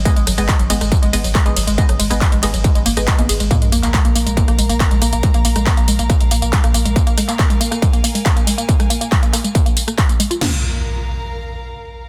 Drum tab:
CC |----------------|----------------|----------------|----------------|
RD |--x---x---x---x-|--x---x---x---x-|----------------|----------------|
HH |xxox-xoxxxooxxox|xxoxxxoxxxoxxxox|xxox-xoxxxooxxox|xxox-xoxxxoxxxox|
TB |xxxxxxxxxxxxxxxx|xxxxxxxxxxxxxxxx|xxxxxxxxxxxxxxxx|xxxxxxxxxxxxxxxx|
CP |----x-------x---|----x-x-----x---|---xx-------x---|----x-------x---|
SD |--r----r----r---|-r----r----r----|----r----r----r-|---r----r----r--|
BD |o---o---o---o---|o---o---o---o---|o---o---o---o---|o---o---o---o---|

CC |----------------|----------------|x---------------|
RD |----------------|----------------|----------------|
HH |xxox-xoxxxooxxox|xxox-xoxxxoxxxox|----------------|
TB |xxxxxxxxxxxxxxxx|xxxxxxxxxxxxxxxx|----------------|
CP |---xx-------x---|----x-x-----x---|----------------|
SD |--r----r----r---|-r----r----r----|o---------------|
BD |o---o---o---o---|o---o---o---o---|----------------|